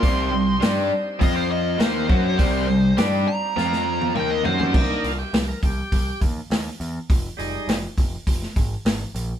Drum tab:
CC |----------------|----------------|x---------------|----------------|
HH |o---o---o---o---|o---o-----------|--o-o-o-o-o-o-o-|o-o-o-o-o-o-o-o-|
SD |----o-------o---|----o---oo------|----o-------o---|----o----o--o---|
T1 |----------------|-----------o----|----------------|----------------|
T2 |----------------|------------o---|----------------|----------------|
FT |----------------|--------------oo|----------------|----------------|
BD |o-------o-----o-|o---------------|o-----o-o-o-----|o-----o-o-o-----|